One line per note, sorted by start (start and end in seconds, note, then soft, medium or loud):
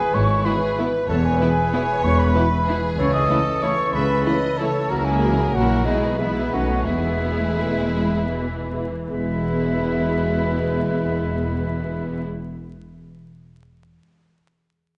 0.00 0.14 G#2 soft
0.00 0.22 E3 medium
0.00 0.28 G#3 soft
0.00 0.45 E4 soft
0.00 0.16 G#4 medium
0.00 0.61 G#4 medium
0.00 0.13 B4 medium
0.00 0.23 B4 medium
0.00 0.77 B4 medium
0.00 1.56 E5 medium
0.00 0.15 G#5 medium
0.14 0.40 G#1 medium
0.14 0.40 G#2 medium
0.14 1.10 G#2 medium
0.14 0.45 E4 medium
0.14 0.47 C#5 medium
0.14 0.47 C#6 loud
0.29 2.99 G#3 soft
0.45 0.57 B2 medium
0.45 0.53 E3 medium
0.45 1.05 E3 medium
0.45 0.58 E3 medium
0.45 0.53 B3 medium
0.45 0.57 B3 soft
0.45 0.57 E4 medium
0.45 0.93 E4 medium
0.45 0.54 E4 medium
0.45 0.78 G#4 medium
0.45 1.05 B4 medium
0.45 0.94 B4 medium
0.45 0.80 B5 medium
0.62 1.73 G#4 medium
0.78 0.89 B2 medium
0.78 0.89 E3 medium
0.78 0.86 E3 soft
0.78 0.86 B3 medium
0.78 0.89 B3 medium
0.78 0.89 E4 medium
0.78 0.87 E4 soft
0.78 1.09 B4 medium
0.78 1.39 B4 medium
0.94 1.23 E4 soft
1.08 1.35 E1 medium
1.08 1.34 E2 medium
1.08 2.94 E3 medium
1.08 2.04 E3 medium
1.08 1.16 A4 medium
1.08 2.94 B4 medium
1.08 1.39 C#5 medium
1.08 1.26 A5 medium
1.24 2.19 E4 soft
1.24 2.02 G#4 medium
1.24 2.05 G#5 medium
1.39 1.51 B2 medium
1.39 1.51 E3 medium
1.39 1.48 E3 medium
1.39 1.52 B3 medium
1.39 1.48 B3 medium
1.39 1.52 E4 soft
1.39 1.50 E4 medium
1.39 1.72 B4 medium
1.39 1.89 B4 medium
1.57 2.50 E5 medium
1.73 1.84 B2 medium
1.73 1.84 E3 medium
1.73 1.81 E3 soft
1.73 1.81 B3 medium
1.73 1.84 B3 medium
1.73 1.84 E4 medium
1.73 1.82 E4 medium
1.73 2.66 G#4 medium
1.73 2.35 C#5 medium
1.90 2.34 B4 soft
2.03 2.29 E1 medium
2.03 2.29 E2 medium
2.03 3.00 E3 soft
2.03 2.20 C#5 medium
2.03 2.21 C#6 loud
2.19 3.29 E4 soft
2.19 2.97 B4 medium
2.19 2.98 B5 medium
2.34 2.46 B2 medium
2.34 2.42 E3 medium
2.34 2.47 E3 medium
2.34 2.43 B3 medium
2.34 2.47 B3 medium
2.34 2.43 E4 medium
2.34 2.47 E4 medium
2.34 2.67 B4 medium
2.34 2.82 B4 soft
2.52 5.87 E5 medium
2.67 2.78 B2 medium
2.67 2.76 E3 soft
2.67 2.79 E3 medium
2.67 2.79 B3 medium
2.67 2.76 B3 soft
2.67 2.79 E4 medium
2.67 2.77 E4 medium
2.67 3.29 G#4 medium
2.67 2.99 G#4 soft
2.83 2.99 B4 soft
2.98 3.24 C#2 medium
2.98 3.93 C#3 soft
2.98 3.24 C#3 medium
2.98 3.61 E3 medium
2.98 3.61 A4 medium
2.98 3.13 C#5 medium
2.98 3.04 C#6 medium
3.12 3.77 A3 soft
3.12 3.64 D#5 medium
3.12 3.64 D#6 medium
3.29 3.41 C#3 medium
3.29 3.41 E3 medium
3.29 3.38 E3 soft
3.29 3.38 A3 medium
3.29 3.42 A3 medium
3.29 3.61 E4 medium
3.29 3.42 E4 soft
3.29 3.39 E4 medium
3.29 3.62 A4 medium
3.46 4.41 A4 soft
3.62 3.74 C#3 medium
3.62 3.71 E3 soft
3.62 3.74 E3 medium
3.62 4.57 E3 medium
3.62 3.70 A3 soft
3.62 3.74 A3 medium
3.62 4.24 E4 medium
3.62 3.74 E4 soft
3.62 3.71 E4 medium
3.62 4.56 A4 medium
3.62 3.94 C#5 medium
3.62 3.95 C#5 medium
3.62 3.93 C#6 medium
3.78 4.73 A3 soft
3.93 4.20 C#2 medium
3.93 4.88 C#3 medium
3.93 4.20 C#3 medium
3.93 4.60 B4 medium
3.93 4.25 E5 medium
3.93 4.59 B5 medium
4.09 5.87 C#4 soft
4.25 4.37 C#3 medium
4.25 4.37 E3 medium
4.25 4.34 E3 soft
4.25 4.33 A3 soft
4.25 4.38 A3 soft
4.25 4.57 E4 soft
4.25 4.34 E4 medium
4.25 4.38 E4 soft
4.25 4.58 D#5 medium
4.42 4.91 A4 soft
4.58 4.70 C#3 medium
4.58 4.91 E3 soft
4.58 4.70 E3 medium
4.58 4.67 E3 soft
4.58 4.70 A3 soft
4.58 4.67 A3 soft
4.58 5.20 E4 soft
4.58 4.70 E4 soft
4.58 4.67 E4 medium
4.58 4.91 A4 medium
4.58 4.89 A4 medium
4.58 4.90 C#5 medium
4.58 4.91 A5 medium
4.74 4.91 A3 soft
4.89 5.51 C#2 medium
4.89 5.87 C#3 soft
4.89 5.51 C#3 medium
4.89 5.54 F#3 medium
4.89 5.51 F#3 medium
4.89 5.50 A#3 medium
4.89 5.51 E4 soft
4.89 5.21 F#4 medium
4.89 5.05 A#4 medium
4.89 5.54 A#4 medium
4.89 5.06 A#5 medium
5.04 5.87 A#3 soft
5.04 5.56 G#4 medium
5.04 5.55 G#5 medium
5.21 5.34 C#3 medium
5.21 5.34 E3 medium
5.21 5.33 A#3 soft
5.21 5.69 E4 soft
5.21 5.33 F#4 soft
5.21 5.84 A#4 medium
5.38 5.87 A#4 soft
5.53 5.86 A#1 medium
5.53 5.86 A#2 medium
5.53 5.67 C#3 medium
5.53 5.67 E3 soft
5.53 5.87 F#3 medium
5.53 5.85 F#3 soft
5.53 5.85 A#3 soft
5.53 5.66 A#3 soft
5.53 5.85 E4 medium
5.53 5.85 F#4 medium
5.53 5.66 F#4 soft
5.53 5.85 A#4 medium
5.53 5.85 F#5 medium
5.85 6.51 B1 medium
5.85 6.52 B2 soft
5.85 6.51 B2 soft
5.85 6.17 G#3 medium
5.85 6.17 G#3 soft
5.85 6.17 B3 medium
5.85 6.17 D#4 medium
5.85 6.18 E4 soft
5.85 6.18 G#4 soft
5.85 6.17 B4 soft
5.85 6.19 D#5 medium
6.02 9.11 B3 soft
6.17 6.31 B2 soft
6.17 6.31 E3 soft
6.17 6.55 G#3 soft
6.17 6.52 G#3 soft
6.17 6.52 B3 medium
6.17 6.31 B3 soft
6.17 6.54 E4 soft
6.17 6.52 E4 soft
6.17 6.31 G#4 soft
6.17 6.85 B4 medium
6.17 6.54 B4 soft
6.17 6.51 E5 medium
6.35 7.57 B4 soft
6.51 6.85 B1 medium
6.51 6.64 B2 soft
6.51 6.87 B2 medium
6.51 6.85 B2 soft
6.51 6.64 D#3 soft
6.51 6.85 A3 soft
6.51 6.88 A3 soft
6.51 6.85 C#4 soft
6.51 6.65 C#4 soft
6.51 6.86 D#4 soft
6.51 6.85 F#4 medium
6.51 6.65 A4 soft
6.51 6.84 C#5 soft
6.51 6.84 F#5 medium
6.70 6.87 D#4 soft
6.85 8.91 E1 medium
6.85 8.91 E2 soft
6.85 7.93 E3 soft
6.85 8.91 G#3 medium
6.85 7.17 G#3 soft
6.85 7.17 B3 soft
6.85 8.91 E4 soft
6.85 8.87 E4 medium
6.85 8.91 G#4 soft
6.85 8.87 B4 medium
6.85 8.87 E5 medium
7.03 8.11 E4 soft
7.20 7.34 B2 soft
7.20 7.34 E3 soft
7.20 7.34 B3 soft
7.20 7.38 B3 medium
7.20 7.34 G#4 soft
7.20 7.76 G#4 soft
7.39 7.93 A3 medium
7.39 8.51 E5 soft
7.58 7.71 B2 soft
7.58 7.71 E3 soft
7.58 7.71 B3 soft
7.58 7.71 G#4 soft
7.58 8.70 B4 soft
7.77 8.30 G#4 soft
7.94 9.09 E3 soft
7.94 8.30 G#3 medium
8.12 9.24 E4 soft
8.31 8.46 B2 soft
8.31 9.08 E3 soft
8.31 8.46 E3 soft
8.31 8.46 B3 soft
8.31 8.91 G#4 soft
8.31 8.46 G#4 soft
8.52 9.37 E5 soft
8.71 8.85 B2 soft
8.71 8.85 E3 soft
8.71 8.85 B3 soft
8.71 8.85 G#4 soft
8.71 11.48 B4 soft
8.92 9.31 G#4 soft
9.09 12.22 E1 soft
9.09 12.22 E2 soft
9.09 12.22 B2 soft
9.09 12.22 E3 soft
9.09 13.01 E3 soft
9.09 12.22 G#3 soft
9.09 12.22 G#3 medium
9.09 12.22 B3 soft
9.09 12.22 E4 medium
9.09 12.22 E4 soft
9.09 12.22 G#4 soft
9.09 12.22 B4 medium
9.09 12.22 E5 medium
9.18 12.96 B3 soft
9.25 12.99 E4 soft
9.32 13.03 G#4 soft
9.39 13.06 E5 soft